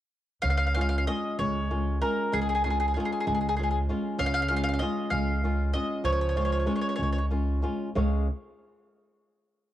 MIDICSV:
0, 0, Header, 1, 4, 480
1, 0, Start_track
1, 0, Key_signature, -5, "major"
1, 0, Tempo, 631579
1, 333, Time_signature, 6, 3, 24, 8
1, 2251, Tempo, 618557
1, 5131, Tempo, 633580
1, 7451, End_track
2, 0, Start_track
2, 0, Title_t, "Mandolin"
2, 0, Program_c, 0, 25
2, 318, Note_on_c, 0, 77, 84
2, 371, Note_off_c, 0, 77, 0
2, 381, Note_on_c, 0, 77, 62
2, 427, Note_off_c, 0, 77, 0
2, 436, Note_on_c, 0, 77, 74
2, 495, Note_off_c, 0, 77, 0
2, 506, Note_on_c, 0, 77, 51
2, 557, Note_off_c, 0, 77, 0
2, 566, Note_on_c, 0, 77, 77
2, 607, Note_off_c, 0, 77, 0
2, 616, Note_on_c, 0, 77, 65
2, 666, Note_off_c, 0, 77, 0
2, 675, Note_on_c, 0, 77, 71
2, 726, Note_off_c, 0, 77, 0
2, 744, Note_on_c, 0, 77, 50
2, 788, Note_off_c, 0, 77, 0
2, 815, Note_on_c, 0, 75, 70
2, 1036, Note_off_c, 0, 75, 0
2, 1054, Note_on_c, 0, 73, 67
2, 1508, Note_off_c, 0, 73, 0
2, 1532, Note_on_c, 0, 70, 60
2, 1775, Note_on_c, 0, 68, 71
2, 1779, Note_off_c, 0, 70, 0
2, 1826, Note_off_c, 0, 68, 0
2, 1835, Note_on_c, 0, 68, 47
2, 1884, Note_off_c, 0, 68, 0
2, 1893, Note_on_c, 0, 68, 54
2, 1927, Note_off_c, 0, 68, 0
2, 1936, Note_on_c, 0, 68, 41
2, 1994, Note_off_c, 0, 68, 0
2, 2007, Note_on_c, 0, 68, 54
2, 2045, Note_off_c, 0, 68, 0
2, 2054, Note_on_c, 0, 68, 48
2, 2107, Note_off_c, 0, 68, 0
2, 2126, Note_on_c, 0, 68, 54
2, 2171, Note_off_c, 0, 68, 0
2, 2188, Note_on_c, 0, 68, 36
2, 2226, Note_off_c, 0, 68, 0
2, 2235, Note_on_c, 0, 68, 38
2, 2271, Note_off_c, 0, 68, 0
2, 2280, Note_on_c, 0, 68, 38
2, 2312, Note_off_c, 0, 68, 0
2, 2321, Note_on_c, 0, 68, 47
2, 2368, Note_off_c, 0, 68, 0
2, 2378, Note_on_c, 0, 68, 46
2, 2429, Note_off_c, 0, 68, 0
2, 2439, Note_on_c, 0, 68, 48
2, 2482, Note_off_c, 0, 68, 0
2, 2491, Note_on_c, 0, 68, 36
2, 2540, Note_off_c, 0, 68, 0
2, 2549, Note_on_c, 0, 68, 41
2, 2588, Note_off_c, 0, 68, 0
2, 2597, Note_on_c, 0, 68, 38
2, 2650, Note_off_c, 0, 68, 0
2, 2660, Note_on_c, 0, 68, 53
2, 2711, Note_off_c, 0, 68, 0
2, 2720, Note_on_c, 0, 68, 47
2, 2764, Note_off_c, 0, 68, 0
2, 2773, Note_on_c, 0, 68, 44
2, 2821, Note_off_c, 0, 68, 0
2, 2830, Note_on_c, 0, 68, 37
2, 2886, Note_off_c, 0, 68, 0
2, 3206, Note_on_c, 0, 77, 96
2, 3251, Note_off_c, 0, 77, 0
2, 3260, Note_on_c, 0, 77, 75
2, 3311, Note_off_c, 0, 77, 0
2, 3321, Note_on_c, 0, 77, 91
2, 3374, Note_off_c, 0, 77, 0
2, 3383, Note_on_c, 0, 77, 67
2, 3424, Note_off_c, 0, 77, 0
2, 3433, Note_on_c, 0, 77, 81
2, 3487, Note_off_c, 0, 77, 0
2, 3496, Note_on_c, 0, 77, 68
2, 3541, Note_off_c, 0, 77, 0
2, 3550, Note_on_c, 0, 77, 82
2, 3581, Note_off_c, 0, 77, 0
2, 3590, Note_on_c, 0, 77, 56
2, 3619, Note_off_c, 0, 77, 0
2, 3628, Note_on_c, 0, 77, 55
2, 3671, Note_on_c, 0, 75, 74
2, 3686, Note_off_c, 0, 77, 0
2, 3901, Note_off_c, 0, 75, 0
2, 3913, Note_on_c, 0, 77, 69
2, 4375, Note_off_c, 0, 77, 0
2, 4403, Note_on_c, 0, 75, 65
2, 4627, Note_off_c, 0, 75, 0
2, 4646, Note_on_c, 0, 73, 68
2, 4696, Note_off_c, 0, 73, 0
2, 4705, Note_on_c, 0, 73, 47
2, 4759, Note_off_c, 0, 73, 0
2, 4773, Note_on_c, 0, 73, 45
2, 4822, Note_off_c, 0, 73, 0
2, 4833, Note_on_c, 0, 73, 53
2, 4881, Note_off_c, 0, 73, 0
2, 4895, Note_on_c, 0, 73, 44
2, 4940, Note_off_c, 0, 73, 0
2, 4957, Note_on_c, 0, 73, 47
2, 4999, Note_off_c, 0, 73, 0
2, 5013, Note_on_c, 0, 73, 46
2, 5055, Note_off_c, 0, 73, 0
2, 5070, Note_on_c, 0, 73, 30
2, 5112, Note_off_c, 0, 73, 0
2, 5127, Note_on_c, 0, 73, 36
2, 5167, Note_off_c, 0, 73, 0
2, 5194, Note_on_c, 0, 73, 44
2, 5229, Note_off_c, 0, 73, 0
2, 5237, Note_on_c, 0, 73, 45
2, 5278, Note_off_c, 0, 73, 0
2, 5294, Note_on_c, 0, 73, 42
2, 5334, Note_off_c, 0, 73, 0
2, 5345, Note_on_c, 0, 73, 52
2, 5387, Note_off_c, 0, 73, 0
2, 5399, Note_on_c, 0, 73, 38
2, 5444, Note_off_c, 0, 73, 0
2, 5472, Note_on_c, 0, 73, 45
2, 5507, Note_off_c, 0, 73, 0
2, 5516, Note_on_c, 0, 73, 36
2, 5561, Note_off_c, 0, 73, 0
2, 7451, End_track
3, 0, Start_track
3, 0, Title_t, "Nylon-string guitar"
3, 0, Program_c, 1, 24
3, 328, Note_on_c, 1, 49, 54
3, 576, Note_on_c, 1, 61, 34
3, 580, Note_on_c, 1, 56, 38
3, 586, Note_on_c, 1, 65, 40
3, 801, Note_off_c, 1, 49, 0
3, 809, Note_off_c, 1, 56, 0
3, 809, Note_off_c, 1, 61, 0
3, 813, Note_off_c, 1, 65, 0
3, 817, Note_on_c, 1, 56, 41
3, 819, Note_on_c, 1, 61, 40
3, 822, Note_on_c, 1, 65, 46
3, 1045, Note_off_c, 1, 56, 0
3, 1054, Note_on_c, 1, 56, 51
3, 1205, Note_off_c, 1, 61, 0
3, 1208, Note_off_c, 1, 65, 0
3, 1289, Note_off_c, 1, 56, 0
3, 1297, Note_on_c, 1, 56, 37
3, 1298, Note_on_c, 1, 61, 28
3, 1300, Note_on_c, 1, 65, 45
3, 1520, Note_off_c, 1, 56, 0
3, 1521, Note_off_c, 1, 61, 0
3, 1527, Note_off_c, 1, 65, 0
3, 1528, Note_on_c, 1, 56, 43
3, 1532, Note_on_c, 1, 61, 35
3, 1536, Note_on_c, 1, 65, 41
3, 1757, Note_off_c, 1, 56, 0
3, 1766, Note_on_c, 1, 56, 61
3, 1920, Note_off_c, 1, 61, 0
3, 1923, Note_off_c, 1, 65, 0
3, 2000, Note_off_c, 1, 56, 0
3, 2009, Note_on_c, 1, 56, 37
3, 2015, Note_on_c, 1, 61, 34
3, 2021, Note_on_c, 1, 65, 44
3, 2243, Note_off_c, 1, 56, 0
3, 2245, Note_off_c, 1, 61, 0
3, 2248, Note_off_c, 1, 65, 0
3, 2252, Note_on_c, 1, 56, 52
3, 2256, Note_on_c, 1, 61, 43
3, 2257, Note_on_c, 1, 65, 54
3, 2479, Note_off_c, 1, 56, 0
3, 2488, Note_on_c, 1, 56, 62
3, 2644, Note_off_c, 1, 61, 0
3, 2645, Note_off_c, 1, 65, 0
3, 2727, Note_off_c, 1, 56, 0
3, 2737, Note_on_c, 1, 56, 37
3, 2741, Note_on_c, 1, 65, 40
3, 2745, Note_on_c, 1, 61, 36
3, 2964, Note_off_c, 1, 56, 0
3, 2964, Note_off_c, 1, 61, 0
3, 2970, Note_off_c, 1, 65, 0
3, 2973, Note_on_c, 1, 56, 44
3, 2974, Note_on_c, 1, 61, 39
3, 2980, Note_on_c, 1, 65, 48
3, 3200, Note_on_c, 1, 49, 56
3, 3358, Note_off_c, 1, 56, 0
3, 3358, Note_off_c, 1, 61, 0
3, 3362, Note_off_c, 1, 65, 0
3, 3445, Note_on_c, 1, 61, 33
3, 3446, Note_on_c, 1, 56, 40
3, 3449, Note_on_c, 1, 65, 45
3, 3672, Note_off_c, 1, 49, 0
3, 3678, Note_off_c, 1, 56, 0
3, 3682, Note_off_c, 1, 61, 0
3, 3682, Note_off_c, 1, 65, 0
3, 3687, Note_on_c, 1, 56, 49
3, 3690, Note_on_c, 1, 61, 40
3, 3694, Note_on_c, 1, 65, 51
3, 3920, Note_off_c, 1, 56, 0
3, 3929, Note_on_c, 1, 56, 56
3, 4080, Note_off_c, 1, 61, 0
3, 4080, Note_off_c, 1, 65, 0
3, 4163, Note_off_c, 1, 56, 0
3, 4172, Note_on_c, 1, 56, 42
3, 4176, Note_on_c, 1, 61, 36
3, 4181, Note_on_c, 1, 65, 42
3, 4398, Note_off_c, 1, 56, 0
3, 4404, Note_off_c, 1, 61, 0
3, 4404, Note_off_c, 1, 65, 0
3, 4407, Note_on_c, 1, 56, 39
3, 4413, Note_on_c, 1, 61, 35
3, 4414, Note_on_c, 1, 65, 44
3, 4639, Note_on_c, 1, 53, 54
3, 4796, Note_off_c, 1, 56, 0
3, 4800, Note_off_c, 1, 61, 0
3, 4800, Note_off_c, 1, 65, 0
3, 4886, Note_on_c, 1, 56, 44
3, 4891, Note_on_c, 1, 61, 43
3, 4893, Note_on_c, 1, 65, 47
3, 5112, Note_off_c, 1, 56, 0
3, 5116, Note_off_c, 1, 61, 0
3, 5117, Note_off_c, 1, 53, 0
3, 5120, Note_off_c, 1, 65, 0
3, 5121, Note_on_c, 1, 56, 49
3, 5125, Note_on_c, 1, 61, 46
3, 5130, Note_on_c, 1, 65, 52
3, 5355, Note_off_c, 1, 56, 0
3, 5364, Note_on_c, 1, 56, 52
3, 5520, Note_off_c, 1, 61, 0
3, 5523, Note_off_c, 1, 65, 0
3, 5601, Note_off_c, 1, 56, 0
3, 5608, Note_on_c, 1, 56, 31
3, 5611, Note_on_c, 1, 61, 36
3, 5616, Note_on_c, 1, 65, 43
3, 5840, Note_off_c, 1, 56, 0
3, 5845, Note_off_c, 1, 61, 0
3, 5848, Note_off_c, 1, 65, 0
3, 5849, Note_on_c, 1, 56, 37
3, 5853, Note_on_c, 1, 61, 37
3, 5859, Note_on_c, 1, 65, 49
3, 6047, Note_off_c, 1, 56, 0
3, 6050, Note_off_c, 1, 61, 0
3, 6051, Note_off_c, 1, 65, 0
3, 6101, Note_on_c, 1, 49, 53
3, 6101, Note_on_c, 1, 56, 45
3, 6105, Note_on_c, 1, 68, 48
3, 6108, Note_on_c, 1, 73, 40
3, 6110, Note_on_c, 1, 77, 43
3, 6114, Note_off_c, 1, 73, 0
3, 6114, Note_on_c, 1, 73, 55
3, 6333, Note_off_c, 1, 56, 0
3, 6334, Note_off_c, 1, 49, 0
3, 6335, Note_off_c, 1, 68, 0
3, 6338, Note_off_c, 1, 73, 0
3, 6338, Note_off_c, 1, 77, 0
3, 7451, End_track
4, 0, Start_track
4, 0, Title_t, "Upright bass"
4, 0, Program_c, 2, 32
4, 327, Note_on_c, 2, 37, 65
4, 798, Note_off_c, 2, 37, 0
4, 1056, Note_on_c, 2, 37, 68
4, 1523, Note_off_c, 2, 37, 0
4, 1777, Note_on_c, 2, 37, 68
4, 2240, Note_off_c, 2, 37, 0
4, 2492, Note_on_c, 2, 37, 78
4, 2959, Note_off_c, 2, 37, 0
4, 3202, Note_on_c, 2, 37, 63
4, 3671, Note_off_c, 2, 37, 0
4, 3921, Note_on_c, 2, 37, 76
4, 4392, Note_off_c, 2, 37, 0
4, 4637, Note_on_c, 2, 37, 66
4, 5116, Note_off_c, 2, 37, 0
4, 5373, Note_on_c, 2, 37, 69
4, 5847, Note_off_c, 2, 37, 0
4, 6103, Note_on_c, 2, 37, 77
4, 6335, Note_off_c, 2, 37, 0
4, 7451, End_track
0, 0, End_of_file